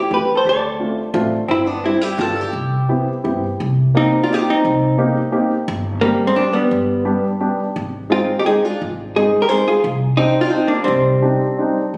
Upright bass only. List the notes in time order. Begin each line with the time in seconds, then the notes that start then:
0.11 E2
0.45 D2
1.14 A1
1.48 G1
2.19 G1
2.53 C2
3.25 G2
3.60 C2
4.65 C2
5.68 G1
6.71 G1
7.76 G#1
8.82 G#1
9.84 C2
10.88 C2
11.94 C2